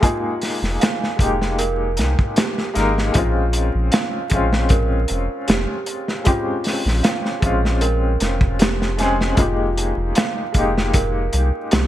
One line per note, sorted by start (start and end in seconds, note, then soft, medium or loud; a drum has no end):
0.00 1.16 G#3 medium
0.00 0.02 A#3 medium
0.00 0.21 A#3 medium
0.00 0.02 D#4 medium
0.00 0.21 D#4 medium
0.00 0.26 F4 medium
0.00 1.22 G4 medium
0.00 2.37 G4 medium
0.00 0.22 G#4 medium
0.00 1.59 A#4 medium
0.00 kick medium
0.00 closed hi-hat medium
0.42 snare soft
0.42 open hi-hat medium
0.62 0.78 F1 medium
0.62 snare soft
0.80 1.18 F5 medium
0.80 snare loud
0.80 closed hi-hat medium
1.03 snare soft
1.16 2.00 F1 medium
1.16 2.69 G#3 medium
1.16 2.71 A#3 medium
1.16 2.71 D#4 medium
1.16 kick medium
1.20 2.72 G4 medium
1.20 closed hi-hat medium
1.42 snare soft
1.58 1.96 A#4 medium
1.58 closed hi-hat medium
1.97 2.16 C2 medium
1.97 snare soft
1.97 closed hi-hat medium
2.19 kick medium
2.36 3.11 G4 medium
2.36 snare loud
2.36 closed hi-hat medium
2.58 snare soft
2.74 3.10 G#1 medium
2.74 3.03 G#3 medium
2.74 3.04 A#3 medium
2.74 3.04 D#4 medium
2.74 3.05 A#4 medium
2.74 snare soft
2.74 closed hi-hat medium
2.98 snare soft
3.13 3.71 A#1 medium
3.13 4.26 G#3 medium
3.13 4.27 C4 medium
3.13 4.27 C#4 medium
3.13 3.38 F4 medium
3.13 kick medium
3.13 closed hi-hat medium
3.18 4.29 F4 medium
3.53 closed hi-hat medium
3.75 3.90 A#1 medium
3.92 4.29 F5 medium
3.92 snare loud
3.92 closed hi-hat medium
4.30 5.06 A#1 medium
4.30 6.21 G#3 medium
4.30 6.21 C4 medium
4.30 6.23 C#4 medium
4.30 kick loud
4.30 closed hi-hat medium
4.35 6.23 F4 medium
4.53 snare medium
4.69 5.07 A#4 medium
4.69 kick loud
4.69 closed hi-hat medium
5.08 5.28 F1 medium
5.08 closed hi-hat medium
5.48 5.66 F1 medium
5.48 6.22 G4 medium
5.48 snare loud
5.48 closed hi-hat medium
5.86 closed hi-hat medium
6.08 snare soft
6.24 6.44 G#3 medium
6.24 6.45 C4 medium
6.24 6.45 C#4 medium
6.24 6.49 F4 medium
6.24 6.45 G4 medium
6.24 kick loud
6.24 closed hi-hat medium
6.64 snare soft
6.64 open hi-hat medium
6.86 7.02 A#1 medium
6.86 snare soft
7.03 7.41 F5 medium
7.03 snare loud
7.03 closed hi-hat medium
7.25 snare soft
7.40 8.17 A#1 medium
7.40 8.93 G#3 medium
7.40 8.94 C4 medium
7.40 8.95 C#4 medium
7.40 kick loud
7.40 closed hi-hat medium
7.46 8.96 F4 medium
7.65 snare soft
7.81 8.19 A#4 medium
7.81 closed hi-hat medium
8.20 9.34 F1 medium
8.20 snare soft
8.20 closed hi-hat medium
8.41 kick loud
8.59 9.34 G4 medium
8.59 snare loud
8.59 closed hi-hat medium
8.82 snare soft
8.97 9.27 G#3 medium
8.97 9.27 C4 medium
8.97 9.28 C#4 medium
8.97 9.28 G#4 medium
8.97 snare soft
8.97 closed hi-hat medium
9.21 snare soft
9.35 9.93 F1 medium
9.35 10.49 G#3 medium
9.35 10.50 A#3 medium
9.35 10.51 D#4 medium
9.35 9.61 F4 medium
9.35 kick loud
9.35 closed hi-hat medium
9.41 10.52 G4 medium
9.78 closed hi-hat medium
9.97 10.13 F1 medium
10.15 10.53 F5 medium
10.15 snare loud
10.15 closed hi-hat medium
10.52 11.29 F1 medium
10.52 11.87 G#3 medium
10.52 11.87 A#3 medium
10.52 11.87 D#4 medium
10.52 kick medium
10.52 closed hi-hat medium
10.58 11.87 G4 medium
10.78 snare medium
10.93 11.31 A#4 medium
10.93 kick loud
10.93 closed hi-hat medium
11.33 11.51 C2 medium
11.33 closed hi-hat medium
11.71 11.87 C2 loud
11.71 11.87 G4 medium
11.71 snare loud
11.71 closed hi-hat medium